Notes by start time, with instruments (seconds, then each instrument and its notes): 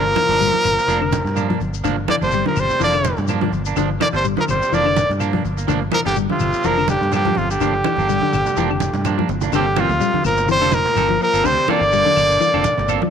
Already playing: fingered electric bass G1, baritone saxophone A#2, tenor saxophone F3, trumpet A#4
0.06 muted clean electric guitar stroke
0.16 clean electric guitar E3, muted clean electric guitar stroke, cajon bass, high conga, claves, shekere
0.29 fingered electric bass G1, clean electric guitar D4, muted clean electric guitar stroke, cajon slap, high conga, shekere
0.41 clean electric guitar G3, shekere
0.53 high conga
0.64 fingered electric bass G1, muted clean electric guitar stroke, cajon bass, claves, shekere
0.79 cajon slap, shekere
0.88 fingered electric bass F1, clean electric guitar F3 A#3 D4, muted clean electric guitar stroke, cajon slap, shekere
1.01 clean electric guitar D3, muted clean electric guitar stroke, claves
1.12 muted clean electric guitar stroke, cajon bass, cajon slap, high conga, shekere
1.24 fingered electric bass G2, muted clean electric guitar stroke, cajon slap, low conga, shekere
1.35 clean electric guitar F3 A#3 D4, cajon slap, high conga, claves, shekere
1.48 clean electric guitar F3 A#3 D4, cajon bass, cajon slap, high conga
1.60 fingered electric bass G1, muted clean electric guitar stroke, cajon bass, shekere
1.74 cajon slap, shekere
1.84 fingered electric bass G1, clean electric guitar D3 F3 A#3 D4, cajon bass, cajon slap, low conga, claves, shekere
1.98 muted clean electric guitar stroke
2.08 baritone saxophone D3, clean electric guitar E3, tenor saxophone A#3, trumpet D5, muted clean electric guitar stroke, cajon bass, cajon slap, high conga, claves, shekere
2.21 fingered electric bass G1, baritone saxophone C3, tenor saxophone G3, clean electric guitar A#3 D4, trumpet C5, high conga, shekere
2.31 clean electric guitar G3, muted clean electric guitar stroke, shekere
2.46 baritone saxophone A#2, clean electric guitar D3, tenor saxophone F3, trumpet A#4, high conga
2.56 fingered electric bass G1, baritone saxophone C3, tenor saxophone G3, trumpet C5, muted clean electric guitar stroke, cajon bass, claves, shekere
2.70 cajon slap, low conga, shekere
2.80 fingered electric bass F1, baritone saxophone D3, clean electric guitar E3 F3 A#3 D4, tenor saxophone A#3, trumpet D5, cajon slap, shekere
2.94 clean electric guitar D3, muted clean electric guitar stroke, claves
3.04 muted clean electric guitar stroke, cajon slap, high conga, shekere
3.17 fingered electric bass G2, muted clean electric guitar stroke, cajon slap, low conga, shekere
3.28 clean electric guitar F3 A#3 D4, cajon slap, high conga, claves, shekere
3.41 clean electric guitar F3 A#3 D4, cajon bass, high conga
3.52 fingered electric bass G1, muted clean electric guitar stroke, cajon bass, shekere
3.65 clean electric guitar A#3 D4, cajon slap, shekere
3.76 fingered electric bass G1, clean electric guitar D3 F3 D4, muted clean electric guitar stroke, cajon bass, low conga, claves, shekere
3.91 muted clean electric guitar stroke
4.00 baritone saxophone D3, clean electric guitar E3, tenor saxophone A#3, trumpet D5, muted clean electric guitar stroke, cajon bass, cajon slap, high conga, claves, shekere
4.13 fingered electric bass G1, baritone saxophone C3, tenor saxophone G3, clean electric guitar A#3 D4, trumpet C5, cajon slap, shekere
4.24 clean electric guitar G3, muted clean electric guitar stroke, cajon slap, shekere
4.37 baritone saxophone A#2, clean electric guitar D3, tenor saxophone F3, trumpet A#4, high conga
4.48 fingered electric bass G1, baritone saxophone C3, tenor saxophone G3, trumpet C5, muted clean electric guitar stroke, cajon bass, claves, shekere
4.62 cajon slap, shekere
4.71 fingered electric bass F1, baritone saxophone D3, clean electric guitar E3 F3 A#3 D4, tenor saxophone A#3, trumpet D5, cajon slap, shekere
4.85 clean electric guitar D3, muted clean electric guitar stroke, claves
4.96 muted clean electric guitar stroke, cajon bass, cajon slap, high conga, shekere
5.09 fingered electric bass G2, muted clean electric guitar stroke, cajon slap, low conga, shekere
5.20 clean electric guitar F3 A#3 D4, cajon slap, claves, shekere
5.33 clean electric guitar F3 A#3 D4, cajon bass, high conga
5.45 fingered electric bass G1, muted clean electric guitar stroke, cajon bass, shekere
5.57 clean electric guitar A#3, muted clean electric guitar stroke, cajon slap, shekere
5.67 fingered electric bass G1, clean electric guitar D3 F3 A#3 D4, cajon bass, cajon slap, low conga, claves, shekere
5.82 muted clean electric guitar stroke
5.92 baritone saxophone A#2, clean electric guitar E3, tenor saxophone F3, trumpet A#4, muted clean electric guitar stroke, cajon bass, high conga, claves, shekere
6.05 fingered electric bass G1, baritone saxophone G2, tenor saxophone D3, clean electric guitar A#3 D4, trumpet G4, cajon slap, high conga, shekere
6.16 clean electric guitar G3, muted clean electric guitar stroke, shekere
6.29 baritone saxophone F2, tenor saxophone C3, clean electric guitar D3, trumpet F4, cajon slap, high conga
6.40 fingered electric bass G1, muted clean electric guitar stroke, cajon bass, cajon slap, claves, shekere
6.53 cajon slap, shekere
6.64 fingered electric bass F1, baritone saxophone A#2, clean electric guitar E3 F3 A#3 D4, tenor saxophone F3, trumpet A#4, shekere
6.77 clean electric guitar D3, muted clean electric guitar stroke, claves
6.87 baritone saxophone G2, tenor saxophone D3, trumpet G4, muted clean electric guitar stroke, cajon slap, high conga, shekere
7.01 fingered electric bass G2, muted clean electric guitar stroke, cajon slap, low conga, shekere
7.12 baritone saxophone G2, tenor saxophone D3, clean electric guitar F3 A#3 D4, trumpet G4, cajon slap, high conga, claves, shekere
7.25 clean electric guitar F3 A#3 D4, cajon bass, high conga
7.35 fingered electric bass G1, baritone saxophone F2, tenor saxophone C3, trumpet F4, muted clean electric guitar stroke, cajon bass, high conga, shekere
7.49 baritone saxophone G2, tenor saxophone D3, clean electric guitar D4, trumpet G4, cajon slap, shekere
7.60 fingered electric bass G1, clean electric guitar D3 F3 A#3 D4, cajon bass, low conga, claves, shekere
7.75 muted clean electric guitar stroke
7.84 clean electric guitar E3, muted clean electric guitar stroke, cajon bass, cajon slap, high conga, claves, shekere
7.97 fingered electric bass G1, clean electric guitar A#3 D4, cajon slap, high conga, shekere
8.08 clean electric guitar G3, muted clean electric guitar stroke, shekere
8.21 clean electric guitar D3, high conga
8.32 fingered electric bass G1, muted clean electric guitar stroke, cajon bass, claves, shekere
8.45 cajon slap, low conga, shekere
8.57 fingered electric bass F1, clean electric guitar E3 F3 A#3 D4, cajon slap, shekere
8.70 clean electric guitar D3, muted clean electric guitar stroke, claves
8.80 muted clean electric guitar stroke, cajon bass, cajon slap, high conga, shekere
8.93 fingered electric bass G2, muted clean electric guitar stroke, cajon slap, low conga, shekere
9.04 clean electric guitar F3 A#3 D4, cajon slap, high conga, claves, shekere
9.18 clean electric guitar F3 A#3 D4, high conga
9.29 fingered electric bass G1, muted clean electric guitar stroke, low conga, shekere
9.41 clean electric guitar A#3 D4, low conga, shekere
9.52 fingered electric bass G1, baritone saxophone G2, clean electric guitar D3 A#3 C4 F4 A4, tenor saxophone D3, trumpet G4, cajon bass, cajon slap, low conga, claves, shekere
9.67 muted clean electric guitar stroke
9.76 baritone saxophone F2, tenor saxophone C3, clean electric guitar E3 A#3 C4 F4, trumpet F4, muted clean electric guitar stroke, cajon slap, high conga, claves, shekere
9.89 fingered electric bass D2, muted clean electric guitar stroke, high conga, shekere
10.00 clean electric guitar G3, muted clean electric guitar stroke, cajon slap, shekere
10.13 clean electric guitar D3, muted fingered electric bass stroke, muted clean electric guitar stroke, high conga
10.23 fingered electric bass G1, baritone saxophone A#2, tenor saxophone F3, trumpet A#4, claves, shekere
10.37 cajon bass, low conga, shekere
10.48 baritone saxophone C3, clean electric guitar E3, tenor saxophone G3, trumpet C5, muted clean electric guitar stroke, cajon slap, shekere
10.61 fingered electric bass F1, clean electric guitar D3 A#3 C4 F4 A4, claves
10.72 baritone saxophone A#2, tenor saxophone F3, trumpet A#4, high conga, shekere
10.85 cajon bass, cajon slap, low conga, shekere
10.95 fingered electric bass G1, clean electric guitar A#3 C4 F4 A4, cajon slap, high conga, claves, shekere
11.09 clean electric guitar F3, muted clean electric guitar stroke, high conga
11.20 baritone saxophone A#2, tenor saxophone F3, trumpet A#4, muted clean electric guitar stroke, cajon slap, shekere
11.33 fingered electric bass G1, clean electric guitar C4 F4 A4, shekere
11.44 fingered electric bass D2, baritone saxophone C3, clean electric guitar D3, tenor saxophone G3, trumpet C5, cajon bass, low conga, claves, shekere
11.57 muted clean electric guitar stroke, cajon slap
11.68 baritone saxophone D3, clean electric guitar E3 A#3 C4 F4 A4, tenor saxophone A#3, trumpet D5, muted fingered electric bass stroke, cajon bass, cajon slap, high conga, claves, shekere
11.81 fingered electric bass G1, muted clean electric guitar stroke, cajon slap, shekere
11.92 clean electric guitar G3, muted clean electric guitar stroke, shekere
12.05 clean electric guitar D3, muted clean electric guitar stroke, cajon slap, high conga
12.16 fingered electric bass G1, claves, shekere
12.30 cajon bass, shekere
12.40 clean electric guitar E3, muted clean electric guitar stroke, shekere
12.54 fingered electric bass F1, clean electric guitar D3 A#3 C4 F4 A4, claves
12.64 muted clean electric guitar stroke, cajon bass, high conga, shekere
12.78 fingered electric bass G1, cajon slap, low conga, shekere
12.88 clean electric guitar A#3 C4 F4 A4, cajon slap, claves, shekere
13.02 clean electric guitar F3, muted clean electric guitar stroke, high conga